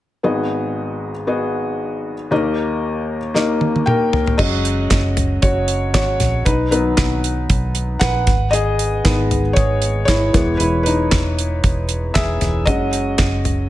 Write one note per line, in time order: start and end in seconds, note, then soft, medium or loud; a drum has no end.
0.23 2.27 G#1 medium
0.23 2.27 G#2 medium
0.23 1.10 B3 medium
0.23 1.10 F#4 medium
0.23 1.11 G#4 medium
0.23 1.11 D#5 medium
1.27 2.14 B3 medium
1.27 2.14 F#4 medium
1.27 2.14 G#4 medium
1.27 2.14 D#5 medium
2.31 4.35 D#2 medium
2.31 4.35 D#3 medium
2.31 3.18 A#3 medium
2.31 3.18 D#4 medium
2.31 3.18 G4 medium
2.31 3.18 D#5 medium
3.34 4.21 A#3 medium
3.34 4.21 D#4 medium
3.34 4.21 G4 medium
3.34 4.21 D#5 medium
3.34 snare soft
3.61 high tom medium
3.76 high tom soft
3.86 4.36 A#4 medium
3.86 4.40 G5 medium
3.86 mid tom medium
4.13 floor tom medium
4.27 floor tom medium
4.38 4.87 F#1 loud
4.38 6.41 F#3 medium
4.38 6.42 G#3 soft
4.38 6.42 C#4 medium
4.38 5.39 F#4 medium
4.38 5.45 D#5 medium
4.38 kick medium
4.38 crash medium
4.65 closed hi-hat medium
4.91 5.39 F#1 loud
4.91 kick loud
4.91 snare loud
4.91 clap medium
4.91 closed hi-hat medium
5.17 closed hi-hat medium
5.17 floor tom medium
5.42 5.94 F#1 medium
5.42 5.91 F#4 medium
5.42 5.92 C#5 medium
5.42 kick loud
5.42 closed hi-hat medium
5.68 closed hi-hat medium
5.94 6.18 G#1 medium
5.94 6.43 F#4 medium
5.94 6.47 C#5 medium
5.94 kick loud
5.94 snare loud
5.94 clap medium
5.94 closed hi-hat medium
6.20 6.44 A#1 medium
6.20 snare soft
6.20 closed hi-hat medium
6.20 floor tom medium
6.45 6.94 B1 loud
6.45 6.70 D#4 medium
6.45 6.70 B4 medium
6.45 kick loud
6.45 closed hi-hat medium
6.71 8.23 D#3 medium
6.71 8.23 F#3 soft
6.71 8.23 B3 medium
6.71 7.72 D#4 medium
6.71 7.71 B4 medium
6.71 closed hi-hat medium
6.97 7.46 B1 loud
6.97 kick loud
6.97 snare loud
6.97 clap medium
6.97 closed hi-hat medium
7.24 closed hi-hat medium
7.50 7.98 B1 loud
7.50 kick loud
7.50 closed hi-hat medium
7.75 closed hi-hat medium
7.99 8.25 A#1 medium
7.99 8.50 B4 medium
7.99 8.54 F#5 loud
7.99 kick loud
7.99 snare loud
7.99 clap medium
7.99 closed hi-hat medium
8.27 9.01 G#1 medium
8.27 kick loud
8.27 snare soft
8.27 closed hi-hat medium
8.27 floor tom medium
8.51 9.53 G#4 medium
8.51 9.59 D#5 loud
8.51 closed hi-hat medium
8.79 closed hi-hat medium
9.04 9.53 G#1 loud
9.04 9.40 D#3 medium
9.04 9.40 G#3 medium
9.04 9.41 B3 medium
9.04 kick loud
9.04 snare loud
9.04 clap medium
9.04 closed hi-hat medium
9.31 closed hi-hat medium
9.31 floor tom medium
9.53 10.05 G#1 medium
9.53 10.05 G#4 medium
9.53 10.04 C#5 medium
9.53 kick loud
9.53 closed hi-hat medium
9.82 closed hi-hat medium
10.05 10.32 G#1 medium
10.05 10.57 E4 medium
10.05 10.60 C#5 medium
10.05 kick loud
10.05 snare loud
10.05 clap medium
10.05 closed hi-hat medium
10.33 10.58 E1 medium
10.33 11.08 E3 medium
10.33 11.08 G#3 medium
10.33 11.08 B3 medium
10.33 kick loud
10.33 snare soft
10.33 closed hi-hat medium
10.33 floor tom medium
10.57 11.08 E1 loud
10.57 10.85 E4 medium
10.57 10.82 B4 medium
10.57 closed hi-hat medium
10.83 11.86 D#4 medium
10.83 11.84 B4 medium
10.83 closed hi-hat medium
11.12 11.60 E1 medium
11.12 kick loud
11.12 snare loud
11.12 clap medium
11.12 closed hi-hat medium
11.39 closed hi-hat medium
11.64 12.12 E1 medium
11.64 kick loud
11.64 closed hi-hat medium
11.89 closed hi-hat medium
12.14 12.40 E1 medium
12.14 12.64 G#4 medium
12.14 12.68 E5 loud
12.14 kick loud
12.14 snare loud
12.14 clap medium
12.14 closed hi-hat medium
12.41 12.67 E1 medium
12.41 snare soft
12.41 closed hi-hat medium
12.41 floor tom medium
12.66 13.15 F#1 medium
12.66 13.41 F#3 medium
12.66 13.41 G#3 soft
12.66 13.41 C#4 medium
12.66 13.67 F#4 medium
12.66 13.69 D#5 loud
12.66 kick loud
12.66 closed hi-hat medium
12.93 closed hi-hat medium
13.18 13.67 F#1 medium
13.18 kick loud
13.18 snare loud
13.18 clap medium
13.18 closed hi-hat medium
13.45 closed hi-hat medium
13.45 floor tom medium